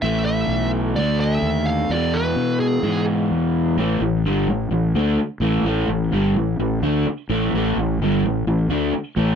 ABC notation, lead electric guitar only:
X:1
M:4/4
L:1/8
Q:1/4=128
K:Ephr
V:1 name="Lead electric guitar"
e e2 z d e2 f | d B2 ^G2 z3 | [K:C] z8 | z8 |
z8 |]